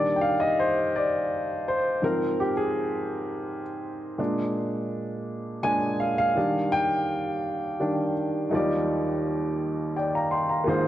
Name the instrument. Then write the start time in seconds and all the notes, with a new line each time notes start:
upright piano
Already playing: D#3 G3 D4 D5
0.16 G5
0.21 F5
0.40 D#5
0.59 C5
0.96 D5
1.68 C5
2.02 G#2 F3 C4 A#4
2.40 G4
2.57 G#4
4.18 A#2 G#3 D4
5.63 A#2 G#3 D4 G#5
6.00 F5
6.18 F5
6.35 D#3 G3 D4
6.72 G5
7.80 D#3 G3 D4
8.49 D#2 D#3 F#3 D#4 F4
8.55 G3 D5
9.96 D5 G5
10.15 F5 A#5
10.31 G5 C6
10.49 F5 A#5
10.64 G#1 G#2 A#3 F4 G#4
10.69 C5